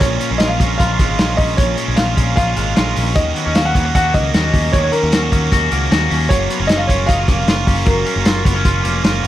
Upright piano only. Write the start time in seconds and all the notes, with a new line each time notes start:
0.00 C#5
0.38 D#5
0.48 F5
0.78 F5
1.37 D#5
1.57 C#5
1.96 F5
2.36 F5
3.16 D#5
3.55 F5
3.65 F#5
3.95 F#5
4.14 D#5
4.72 C#5
4.83 C#5
4.92 A#4
6.29 C#5
6.67 D#5
6.77 F5
6.87 C#5
7.07 F5
7.86 A#4